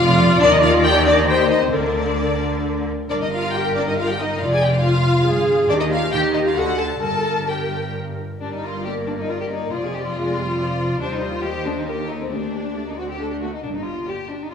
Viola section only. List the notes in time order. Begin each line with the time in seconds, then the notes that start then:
0.00 D5
1.27 C5
1.72 A#4
3.09 A#4
4.41 D5
4.84 F4
5.26 G#4
5.69 G4
6.11 G4
6.55 A4
7.01 A#4
8.41 G3 A#4
8.85 A#3
9.29 A#3
9.73 F3 D5
10.16 G#3 D5
10.38 G3
10.59 F3 D5
11.01 G3 C5
11.44 G3 C5
11.65 A3
11.87 A#3 A#4
12.09 A4
12.31 A#3 G4
12.76 A3
12.87 A#3
12.97 C4
13.19 D4
13.42 A3
13.53 A#3
14.08 A#3 G4
14.51 A#3 G4